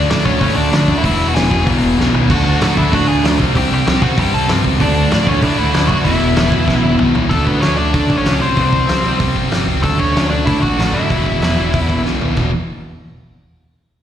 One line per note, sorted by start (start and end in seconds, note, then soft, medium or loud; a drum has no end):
0.00 0.40 D3 loud
0.00 0.41 A3 loud
0.00 0.11 D4 loud
0.10 0.23 A2 medium
0.10 0.25 D3 medium
0.10 0.23 A3 medium
0.10 0.24 D4 medium
0.10 0.22 D4 medium
0.10 0.25 D5 medium
0.10 snare loud
0.10 open hi-hat medium
0.23 0.38 D2 medium
0.23 0.38 D3 medium
0.23 0.39 A3 loud
0.23 0.55 C#4 medium
0.23 0.39 D4 loud
0.23 0.55 C#5 loud
0.23 kick medium
0.39 0.54 A2 loud
0.39 0.70 D3 loud
0.39 0.70 A3 loud
0.39 0.71 D4 loud
0.39 kick loud
0.39 open hi-hat medium
0.56 0.69 D2 medium
0.56 0.94 D4 medium
0.56 0.97 D5 medium
0.71 0.85 D2 medium
0.71 0.87 D3 medium
0.71 0.87 A3 medium
0.71 0.86 D4 loud
0.71 snare loud
0.71 open hi-hat medium
0.87 1.01 D2 loud
0.87 1.02 D3 medium
0.87 1.02 A3 medium
0.87 1.03 D4 medium
0.87 kick medium
0.98 1.04 E4 medium
0.98 1.04 E5 medium
1.02 1.16 E1 loud
1.02 1.32 E2 loud
1.02 1.33 B2 loud
1.02 1.34 E3 loud
1.02 1.27 E4 medium
1.02 1.28 E5 loud
1.02 kick loud
1.02 open hi-hat medium
1.20 1.32 E1 loud
1.28 1.35 F#4 medium
1.28 1.36 F#5 medium
1.33 1.48 E1 loud
1.33 1.49 E2 medium
1.33 1.49 B2 medium
1.33 1.48 E3 medium
1.33 1.65 G#4 medium
1.33 1.64 G#5 loud
1.33 snare loud
1.33 open hi-hat medium
1.49 1.63 E1 medium
1.49 1.64 E2 medium
1.49 1.64 B2 loud
1.49 1.65 E3 loud
1.49 kick medium
1.65 1.79 B1 medium
1.65 1.96 E2 loud
1.65 1.96 B2 loud
1.65 1.97 E3 loud
1.65 kick loud
1.65 open hi-hat medium
1.82 1.94 E1 loud
1.97 2.11 B1 medium
1.97 2.14 E2 medium
1.97 2.13 B2 medium
1.97 2.12 E3 loud
1.97 snare medium
2.13 2.26 B1 medium
2.13 2.29 E2 medium
2.13 2.28 B2 medium
2.13 2.28 E3 medium
2.13 floor tom loud
2.28 2.54 D2 loud
2.28 2.59 D3 loud
2.28 2.60 A3 loud
2.28 2.61 D4 loud
2.28 2.59 F#4 medium
2.28 kick loud
2.28 open hi-hat medium
2.28 crash loud
2.33 2.61 F#5 loud
2.61 2.73 A2 loud
2.61 2.77 D3 medium
2.61 2.76 A3 loud
2.61 2.75 D4 medium
2.61 2.76 F#4 medium
2.61 2.78 F#5 medium
2.61 snare loud
2.61 open hi-hat medium
2.76 2.89 D2 medium
2.76 2.91 D3 medium
2.76 2.91 A3 medium
2.76 2.92 D4 loud
2.76 2.92 E4 medium
2.76 2.95 E5 medium
2.76 kick medium
2.92 3.05 A2 loud
2.92 3.22 D3 loud
2.92 3.23 A3 loud
2.92 3.24 D4 loud
2.92 3.08 F#4 medium
2.92 3.09 F#5 medium
2.92 kick loud
2.92 open hi-hat medium
3.07 3.20 D2 loud
3.07 3.23 G#4 medium
3.07 3.22 G#5 loud
3.23 3.36 D2 loud
3.23 3.38 D3 medium
3.23 3.39 A3 loud
3.23 3.39 D4 loud
3.23 snare loud
3.23 open hi-hat medium
3.38 3.52 C2 loud
3.38 3.55 C3 loud
3.38 3.54 G3 medium
3.38 3.53 C4 loud
3.38 kick loud
3.54 3.67 C2 loud
3.54 3.88 C3 medium
3.54 3.87 G3 loud
3.54 3.86 C4 loud
3.54 3.70 G4 medium
3.54 3.71 G5 medium
3.54 kick loud
3.54 open hi-hat medium
3.71 3.83 C2 medium
3.71 3.86 G4 medium
3.71 3.86 G5 medium
3.87 3.99 C2 medium
3.87 4.01 C3 medium
3.87 4.02 G3 medium
3.87 4.03 C4 medium
3.87 4.01 G4 medium
3.87 4.03 G5 medium
3.87 snare loud
3.87 open hi-hat medium
4.02 4.14 C2 medium
4.02 4.18 C3 medium
4.02 4.17 G3 loud
4.02 4.16 C4 loud
4.02 4.17 F#4 medium
4.02 4.17 F#5 medium
4.02 kick medium
4.17 4.30 G2 loud
4.17 4.48 C3 medium
4.17 4.47 G3 loud
4.17 4.47 C4 loud
4.17 4.33 G4 medium
4.17 4.33 G5 medium
4.17 kick loud
4.17 open hi-hat medium
4.34 4.46 C2 medium
4.34 4.49 A4 medium
4.34 4.48 A5 loud
4.48 4.61 G2 loud
4.48 4.63 C3 medium
4.48 4.64 G3 loud
4.48 4.65 C4 loud
4.48 snare loud
4.48 open hi-hat medium
4.64 4.77 C#2 loud
4.64 4.78 C3 medium
4.64 4.79 G3 loud
4.64 4.80 C4 loud
4.64 kick medium
4.79 5.04 D2 loud
4.79 5.09 D3 medium
4.79 5.11 A3 loud
4.79 5.11 D4 loud
4.79 5.10 D4 medium
4.79 kick medium
4.79 open hi-hat medium
4.83 5.11 D5 loud
5.10 5.25 A2 loud
5.10 5.25 D3 medium
5.10 5.25 A3 loud
5.10 5.26 D4 medium
5.10 5.24 D4 medium
5.10 5.27 D5 medium
5.10 snare loud
5.10 open hi-hat medium
5.26 5.39 D2 medium
5.26 5.40 D3 medium
5.26 5.41 A3 loud
5.26 5.43 C#4 medium
5.26 5.42 D4 loud
5.26 kick medium
5.30 5.44 C#5 medium
5.41 5.55 A2 loud
5.41 5.70 D3 medium
5.41 5.71 A3 loud
5.41 5.72 D4 loud
5.41 5.58 D4 medium
5.41 5.59 D5 medium
5.41 kick loud
5.41 open hi-hat medium
5.58 5.71 D2 loud
5.58 5.87 E4 medium
5.58 5.90 E5 loud
5.71 5.88 D3 medium
5.71 5.87 A3 loud
5.71 5.87 D4 loud
5.71 snare loud
5.71 open hi-hat medium
5.77 5.88 D2 medium
5.88 6.02 D2 loud
5.88 6.04 D3 medium
5.88 6.04 A3 medium
5.88 6.04 D4 loud
5.88 6.04 F#4 medium
5.88 6.04 F#5 loud
5.88 kick medium
6.04 6.17 E1 medium
6.04 6.33 E2 loud
6.04 6.35 B2 loud
6.04 6.35 E3 loud
6.04 6.95 E4 medium
6.04 6.95 E5 medium
6.04 kick loud
6.04 open hi-hat medium
6.22 6.34 E1 medium
6.34 6.49 E1 loud
6.34 6.51 E2 medium
6.34 6.50 B2 medium
6.34 6.50 E3 medium
6.34 snare loud
6.34 open hi-hat medium
6.51 6.65 E1 medium
6.51 6.64 E2 medium
6.51 6.65 B2 medium
6.51 6.66 E3 loud
6.51 kick medium
6.66 6.80 B1 loud
6.66 6.97 E2 loud
6.66 6.98 B2 loud
6.66 6.99 E3 loud
6.66 kick loud
6.66 snare medium
6.83 6.96 E1 medium
6.83 high tom medium
6.98 7.12 B1 medium
6.98 7.14 E2 medium
6.98 7.13 B2 loud
6.98 7.12 E3 loud
6.98 mid tom medium
7.13 7.28 B1 loud
7.13 7.30 E2 medium
7.13 7.30 B2 medium
7.13 7.29 E3 medium
7.13 floor tom loud
7.30 7.46 D2 medium
7.30 7.61 D3 medium
7.30 7.46 A3 medium
7.30 7.61 A3 loud
7.30 7.62 D4 loud
7.30 7.47 A4 medium
7.30 kick loud
7.30 open hi-hat soft
7.44 7.61 D2 medium
7.44 7.61 B3 medium
7.44 7.60 B4 medium
7.44 kick medium
7.61 7.77 D2 medium
7.61 7.77 D3 medium
7.61 7.77 A3 medium
7.61 7.77 C#4 medium
7.61 7.75 D4 medium
7.61 7.77 C#5 medium
7.61 snare loud
7.61 open hi-hat soft
7.77 7.93 D2 medium
7.77 7.92 D3 medium
7.77 7.92 A3 medium
7.77 7.93 D4 medium
7.77 8.15 D4 medium
7.77 8.17 D5 loud
7.93 8.22 D3 medium
7.93 8.09 D3 medium
7.93 8.23 A3 medium
7.93 8.24 D4 loud
7.93 kick loud
7.93 open hi-hat medium
8.09 8.25 A1 medium
8.09 kick medium
8.17 8.40 C#4 medium
8.17 8.42 C#5 medium
8.24 8.41 C#2 medium
8.24 8.39 D3 medium
8.24 8.40 A3 medium
8.24 8.40 D4 medium
8.24 snare medium
8.24 open hi-hat medium
8.39 8.56 C2 medium
8.39 8.56 C3 medium
8.39 8.56 G3 medium
8.39 8.55 C4 medium
8.39 8.56 C4 medium
8.39 8.56 C5 medium
8.56 8.72 C2 medium
8.56 8.88 C3 medium
8.56 8.88 G3 medium
8.56 8.86 C4 loud
8.56 9.17 C4 medium
8.56 9.17 C5 medium
8.56 kick loud
8.56 open hi-hat soft
8.73 8.88 C2 medium
8.73 kick medium
8.88 9.04 C2 medium
8.88 9.02 C3 medium
8.88 9.03 G3 medium
8.88 9.04 C4 medium
8.88 snare loud
8.88 open hi-hat medium
9.04 9.19 C2 medium
9.04 9.19 C3 medium
9.04 9.18 G3 medium
9.04 9.17 C4 medium
9.18 9.35 C3 medium
9.18 9.50 C3 medium
9.18 9.49 G3 medium
9.18 9.48 C4 medium
9.18 kick loud
9.18 open hi-hat medium
9.36 9.51 G1 medium
9.36 kick medium
9.49 9.67 G1 medium
9.49 9.66 C3 medium
9.49 9.66 G3 medium
9.49 9.67 C4 medium
9.49 snare loud
9.49 open hi-hat medium
9.67 9.83 C#2 medium
9.67 9.81 C3 medium
9.67 9.82 G3 medium
9.67 9.83 C4 medium
9.82 9.99 D2 medium
9.82 10.12 D3 medium
9.82 10.13 A3 medium
9.82 9.99 A3 medium
9.82 10.13 D4 medium
9.82 10.00 A4 medium
9.82 kick loud
9.82 open hi-hat soft
9.98 10.15 D2 medium
9.98 10.29 C#4 medium
9.98 10.29 C#5 medium
9.98 kick medium
10.13 10.31 D2 medium
10.13 10.29 D3 medium
10.13 10.29 A3 medium
10.13 10.29 D4 medium
10.13 snare loud
10.13 open hi-hat medium
10.30 10.47 D2 medium
10.30 10.44 D3 medium
10.30 10.45 A3 medium
10.30 10.46 D4 medium
10.30 10.45 D5 medium
10.45 10.76 D3 medium
10.45 10.62 D3 medium
10.45 10.77 A3 medium
10.45 10.77 D4 medium
10.45 10.61 E4 medium
10.45 10.62 E5 medium
10.45 kick loud
10.45 open hi-hat soft
10.62 10.78 A1 medium
10.62 10.92 F#4 medium
10.62 10.95 F#5 loud
10.62 kick medium
10.78 10.92 A1 medium
10.78 10.94 D3 medium
10.78 10.93 A3 medium
10.78 10.93 D4 medium
10.78 snare medium
10.78 open hi-hat soft
10.93 11.09 F#2 medium
10.93 11.09 D3 medium
10.93 11.09 A3 medium
10.93 11.09 D4 medium
10.93 12.01 E4 medium
10.93 12.01 E5 medium
11.09 11.25 E1 medium
11.09 11.40 E2 medium
11.09 11.41 B2 loud
11.09 11.41 E3 loud
11.09 kick loud
11.09 open hi-hat soft
11.26 11.42 E1 medium
11.26 kick medium
11.42 11.57 E1 medium
11.42 11.57 E2 medium
11.42 11.56 B2 medium
11.42 11.56 E3 medium
11.42 snare loud
11.42 open hi-hat medium
11.57 11.73 E1 medium
11.57 11.71 E2 medium
11.57 11.72 B2 medium
11.57 11.73 E3 medium
11.72 12.03 E2 medium
11.72 11.89 E2 medium
11.72 12.04 B2 medium
11.72 12.05 E3 loud
11.72 kick loud
11.72 open hi-hat medium
11.90 12.05 B1 medium
11.90 kick medium
12.04 12.21 B1 medium
12.04 12.21 E2 medium
12.04 12.20 B2 medium
12.04 12.19 E3 medium
12.04 snare soft
12.20 12.36 B1 medium
12.20 12.34 E2 medium
12.20 12.35 B2 medium
12.20 12.36 E3 medium
12.20 floor tom medium
12.36 12.53 E1 medium
12.36 12.49 E2 medium
12.36 12.50 B2 medium
12.36 12.50 E3 medium
12.36 kick medium
12.36 crash medium